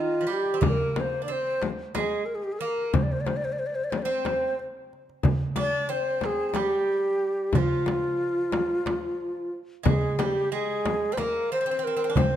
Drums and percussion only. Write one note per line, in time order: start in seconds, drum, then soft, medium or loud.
0.46 darbuka ka soft
0.62 darbuka dum medium
0.62 frame drum medium
0.96 darbuka tek medium
0.96 frame drum medium
1.29 darbuka ka soft
1.62 darbuka tek medium
1.62 frame drum medium
1.95 darbuka tek medium
1.95 frame drum medium
2.78 darbuka ka soft
2.94 frame drum medium
2.94 darbuka dum medium
3.27 darbuka tek medium
3.27 frame drum medium
3.45 darbuka ka soft
3.92 darbuka tek medium
3.92 frame drum medium
4.25 darbuka tek medium
4.25 frame drum medium
4.59 darbuka ka soft
4.93 darbuka ka soft
5.09 darbuka ka soft
5.23 frame drum medium
5.23 darbuka dum medium
5.56 darbuka tek medium
5.56 frame drum medium
5.90 darbuka ka soft
6.21 darbuka tek medium
6.21 frame drum medium
6.54 darbuka tek medium
6.54 frame drum medium
7.53 frame drum medium
7.53 darbuka dum medium
7.86 darbuka tek medium
7.86 frame drum medium
8.21 darbuka ka soft
8.52 darbuka tek medium
8.52 frame drum medium
8.86 darbuka tek medium
8.86 frame drum medium
9.85 frame drum medium
9.85 darbuka dum medium
10.19 darbuka tek medium
10.19 frame drum medium
10.53 darbuka ka soft
10.86 darbuka tek medium
10.86 frame drum medium
11.17 darbuka tek medium
11.17 frame drum medium
12.16 darbuka dum medium
12.16 frame drum medium